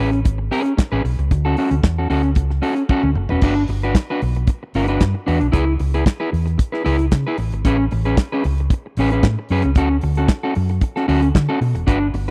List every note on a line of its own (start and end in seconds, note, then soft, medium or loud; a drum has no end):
0.00 0.22 A1 medium
0.00 0.19 C#4 medium
0.00 0.12 G#4 medium
0.00 0.11 B4 medium
0.00 open hi-hat medium
0.13 muted clean electric guitar stroke soft
0.13 closed hi-hat soft
0.25 0.48 G#1 medium
0.25 muted clean electric guitar stroke soft
0.25 kick loud
0.25 closed hi-hat medium
0.38 muted clean electric guitar stroke soft
0.51 0.72 C#4 medium
0.51 0.64 G#4 loud
0.51 0.63 B4 loud
0.51 open hi-hat medium
0.65 muted clean electric guitar stroke medium
0.65 closed hi-hat soft
0.77 muted clean electric guitar stroke soft
0.77 kick loud
0.77 snare loud
0.77 clap medium
0.77 closed hi-hat medium
0.92 1.03 A1 medium
0.92 1.03 C#4 medium
0.92 1.03 G#4 medium
0.92 1.04 B4 medium
1.04 1.17 B1 medium
1.04 muted clean electric guitar stroke soft
1.04 open hi-hat medium
1.19 1.29 C#2 medium
1.19 muted clean electric guitar stroke soft
1.19 closed hi-hat soft
1.31 1.54 D2 loud
1.31 muted clean electric guitar stroke soft
1.31 kick loud
1.31 closed hi-hat medium
1.45 1.57 C#4 medium
1.45 1.57 F#4 medium
1.45 1.58 A4 medium
1.57 1.73 C#4 medium
1.57 1.71 F#4 medium
1.57 1.70 A4 medium
1.57 open hi-hat medium
1.71 1.82 D2 medium
1.71 muted clean electric guitar stroke soft
1.71 closed hi-hat soft
1.83 2.06 E2 medium
1.83 muted clean electric guitar stroke soft
1.83 kick loud
1.83 snare loud
1.83 clap medium
1.83 closed hi-hat medium
1.98 2.09 C#4 soft
1.98 2.09 F#4 medium
1.98 2.10 A4 medium
2.10 2.33 D2 loud
2.10 2.30 C#4 medium
2.10 2.23 F#4 medium
2.10 2.23 A4 medium
2.10 open hi-hat medium
2.23 muted clean electric guitar stroke soft
2.23 closed hi-hat soft
2.35 2.59 C#2 loud
2.35 muted clean electric guitar stroke soft
2.35 kick loud
2.35 closed hi-hat medium
2.50 muted clean electric guitar stroke soft
2.50 snare soft
2.62 2.82 C#4 medium
2.62 2.76 F#4 medium
2.62 2.75 A4 loud
2.62 open hi-hat medium
2.76 muted clean electric guitar stroke medium
2.76 closed hi-hat soft
2.89 3.09 C#4 medium
2.89 3.04 F#4 medium
2.89 3.03 A4 medium
2.89 kick loud
2.89 high tom medium
3.03 3.14 D2 medium
3.03 muted clean electric guitar stroke medium
3.03 mid tom medium
3.15 3.28 F#1 medium
3.15 muted clean electric guitar stroke soft
3.15 mid tom medium
3.29 3.41 E1 medium
3.29 3.43 C#4 medium
3.29 3.42 F#4 medium
3.29 3.43 B4 medium
3.29 floor tom medium
3.41 3.65 G1 loud
3.41 3.62 D4 medium
3.41 3.56 F#4 medium
3.41 3.55 B4 medium
3.41 kick loud
3.41 crash loud
3.56 muted clean electric guitar stroke soft
3.68 3.91 G1 medium
3.68 muted clean electric guitar stroke soft
3.68 open hi-hat medium
3.82 3.95 D4 medium
3.82 3.96 F#4 medium
3.82 3.96 B4 medium
3.82 closed hi-hat soft
3.95 muted clean electric guitar stroke soft
3.95 kick loud
3.95 snare loud
3.95 clap medium
3.95 closed hi-hat medium
4.10 4.22 D4 medium
4.10 4.22 F#4 medium
4.10 4.23 B4 medium
4.22 4.44 B1 medium
4.22 muted clean electric guitar stroke soft
4.22 open hi-hat medium
4.35 muted clean electric guitar stroke soft
4.35 closed hi-hat soft
4.47 muted clean electric guitar stroke soft
4.47 kick loud
4.47 closed hi-hat medium
4.63 muted clean electric guitar stroke soft
4.74 4.97 G1 medium
4.74 4.88 D4 medium
4.74 4.88 F#4 medium
4.74 4.87 B4 medium
4.74 open hi-hat medium
4.88 5.03 D4 medium
4.88 5.03 F#4 medium
4.88 5.02 B4 medium
4.88 closed hi-hat soft
5.00 5.13 G2 medium
5.00 kick loud
5.00 snare loud
5.00 clap loud
5.00 closed hi-hat medium
5.14 muted clean electric guitar stroke medium
5.27 5.39 E2 medium
5.27 5.46 D4 medium
5.27 5.41 F#4 medium
5.27 5.40 B4 medium
5.27 open hi-hat medium
5.41 5.52 B1 medium
5.41 muted clean electric guitar stroke medium
5.41 closed hi-hat soft
5.52 5.76 C#2 loud
5.52 5.72 E4 medium
5.52 5.66 G#4 medium
5.52 5.66 B4 medium
5.52 kick loud
5.52 closed hi-hat medium
5.67 muted clean electric guitar stroke soft
5.79 6.02 C#2 medium
5.79 muted clean electric guitar stroke soft
5.79 open hi-hat medium
5.94 6.05 E4 medium
5.94 6.06 G#4 medium
5.94 6.06 B4 medium
5.94 closed hi-hat soft
6.06 kick loud
6.06 snare loud
6.06 clap medium
6.06 closed hi-hat medium
6.20 6.31 E4 medium
6.20 6.31 G#4 medium
6.20 6.31 B4 medium
6.32 6.55 E2 medium
6.32 muted clean electric guitar stroke soft
6.32 open hi-hat medium
6.46 muted clean electric guitar stroke soft
6.46 closed hi-hat soft
6.58 muted clean electric guitar stroke soft
6.58 kick loud
6.58 closed hi-hat medium
6.72 6.83 E4 soft
6.72 6.84 G#4 medium
6.72 6.85 B4 medium
6.72 snare soft
6.85 7.08 C#2 medium
6.85 7.04 E4 medium
6.85 6.98 G#4 medium
6.85 6.98 B4 loud
6.85 open hi-hat medium
6.99 muted clean electric guitar stroke medium
6.99 closed hi-hat soft
7.11 7.24 C#3 loud
7.11 muted clean electric guitar stroke soft
7.11 kick loud
7.11 snare loud
7.11 clap medium
7.11 closed hi-hat medium
7.27 7.38 E4 medium
7.27 7.38 G#4 medium
7.27 7.39 B4 medium
7.38 7.50 A1 medium
7.38 muted clean electric guitar stroke soft
7.38 open hi-hat medium
7.52 7.63 G#1 medium
7.52 muted clean electric guitar stroke medium
7.52 closed hi-hat soft
7.65 7.87 A1 loud
7.65 7.84 C#4 medium
7.65 7.79 G#4 medium
7.65 7.78 B4 loud
7.65 kick loud
7.65 closed hi-hat medium
7.79 muted clean electric guitar stroke soft
7.91 8.14 A1 medium
7.91 muted clean electric guitar stroke soft
7.91 open hi-hat medium
8.05 8.17 C#4 medium
8.05 8.18 G#4 medium
8.05 8.18 B4 medium
8.05 closed hi-hat soft
8.17 muted clean electric guitar stroke soft
8.17 kick loud
8.17 snare loud
8.17 clap medium
8.17 closed hi-hat medium
8.32 8.44 C#4 medium
8.32 8.45 G#4 medium
8.32 8.45 B4 medium
8.44 8.67 C#2 medium
8.44 muted clean electric guitar stroke medium
8.44 open hi-hat medium
8.58 muted clean electric guitar stroke soft
8.58 closed hi-hat soft
8.70 muted clean electric guitar stroke soft
8.70 kick loud
8.70 closed hi-hat medium
8.86 muted clean electric guitar stroke soft
8.97 9.19 A1 medium
8.97 9.12 C#4 medium
8.97 9.12 G#4 medium
8.97 9.11 B4 medium
8.97 open hi-hat medium
9.10 9.26 C#4 medium
9.10 9.26 G#4 medium
9.10 9.25 B4 medium
9.10 closed hi-hat soft
9.23 9.35 A2 loud
9.23 kick loud
9.23 snare loud
9.23 clap medium
9.23 closed hi-hat medium
9.39 muted clean electric guitar stroke soft
9.49 9.62 F#2 medium
9.49 9.69 C#4 medium
9.49 9.65 G#4 medium
9.49 9.64 B4 medium
9.49 open hi-hat medium
9.62 9.76 C#2 medium
9.62 muted clean electric guitar stroke medium
9.62 closed hi-hat soft
9.75 9.98 D2 loud
9.75 9.96 C#4 medium
9.75 9.90 F#4 medium
9.75 9.90 A4 medium
9.75 kick loud
9.75 closed hi-hat medium
9.91 muted clean electric guitar stroke soft
10.01 10.25 D2 medium
10.01 muted clean electric guitar stroke soft
10.01 open hi-hat medium
10.15 10.28 C#4 medium
10.15 10.29 F#4 medium
10.15 10.29 A4 medium
10.15 closed hi-hat soft
10.28 kick loud
10.28 snare loud
10.28 clap medium
10.28 closed hi-hat medium
10.43 10.55 C#4 medium
10.43 10.55 F#4 medium
10.43 10.55 A4 medium
10.55 10.78 F#2 medium
10.55 muted clean electric guitar stroke soft
10.55 open hi-hat medium
10.69 muted clean electric guitar stroke medium
10.69 closed hi-hat soft
10.81 muted clean electric guitar stroke soft
10.81 kick loud
10.81 closed hi-hat medium
10.96 11.07 C#4 medium
10.96 11.07 F#4 medium
10.96 11.08 A4 medium
10.96 snare soft
11.08 11.31 D2 medium
11.08 11.27 C#4 medium
11.08 11.23 F#4 medium
11.08 11.22 A4 medium
11.08 open hi-hat medium
11.22 muted clean electric guitar stroke medium
11.22 closed hi-hat soft
11.35 11.47 D3 loud
11.35 muted clean electric guitar stroke soft
11.35 kick loud
11.35 snare loud
11.35 clap medium
11.35 closed hi-hat medium
11.49 11.60 C#4 medium
11.49 11.61 F#4 medium
11.49 11.61 A4 medium
11.61 11.73 B2 medium
11.61 muted clean electric guitar stroke soft
11.61 open hi-hat medium
11.75 11.85 E1 medium
11.75 muted clean electric guitar stroke medium
11.75 closed hi-hat soft
11.87 12.10 G1 loud
11.87 12.06 D4 medium
11.87 12.00 F#4 medium
11.87 12.00 B4 medium
11.87 kick loud
11.87 closed hi-hat medium
12.01 muted clean electric guitar stroke soft
12.14 12.30 G1 medium
12.14 muted clean electric guitar stroke medium
12.14 open hi-hat medium